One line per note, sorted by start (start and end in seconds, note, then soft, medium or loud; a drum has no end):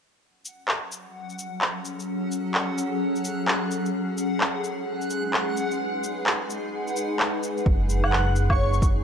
0.22 3.94 F#3 medium
0.22 7.67 F#5 medium
0.30 5.12 C#4 medium
0.45 shaker medium
0.65 3.95 A4 medium
0.65 clap medium
0.92 shaker medium
1.05 9.04 G#4 medium
1.29 shaker soft
1.39 shaker medium
1.61 clap medium
1.85 shaker medium
2.00 shaker soft
2.31 shaker medium
2.54 clap medium
2.78 shaker medium
3.16 shaker soft
3.25 shaker medium
3.48 clap loud
3.71 shaker medium
3.86 shaker soft
3.94 7.66 G#3 medium
4.18 shaker medium
4.37 9.04 D#4 medium
4.37 clap loud
4.64 shaker medium
4.82 8.46 B4 medium
5.01 shaker soft
5.10 shaker medium
5.34 clap loud
5.57 shaker medium
5.71 shaker soft
6.04 shaker soft
6.27 clap loud
6.50 shaker medium
6.88 shaker soft
6.96 shaker medium
7.20 clap loud
7.43 shaker medium
7.57 shaker soft
7.66 9.04 F#1 medium
7.66 9.04 F#3 medium
7.66 kick loud
7.89 shaker medium
7.95 9.04 C#4 medium
8.04 8.28 F#5 medium
8.04 low woodblock medium
8.13 clap loud
8.36 shaker medium
8.50 8.75 C#5 medium
8.50 kick loud
8.50 low woodblock medium
8.74 shaker soft
8.82 kick loud
8.82 shaker medium